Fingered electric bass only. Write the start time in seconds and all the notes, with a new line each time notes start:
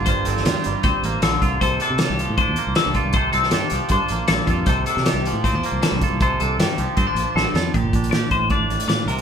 0.00 G1
0.27 G1
0.46 D2
0.66 G1
0.84 D2
1.03 A1
1.22 A#1
1.42 C2
1.62 C2
1.90 C3
2.10 C2
2.30 A2
2.48 E2
2.67 C2
2.86 C2
3.04 C2
3.33 C2
3.53 G2
3.72 C2
3.90 G2
4.10 A#1
4.29 A#1
4.48 F2
4.67 C2
4.97 C3
5.14 C2
5.33 A2
5.52 E2
5.72 C2
5.92 C2
6.11 C2
6.41 C2
6.58 G2
6.78 C2
6.97 G2
7.15 A#1
7.35 A#1
7.54 F2
7.75 A#1
7.83 G1
7.93 A#1
8.13 A#2
8.31 A1
8.59 A1
8.68 A1
8.87 A2
9.06 C2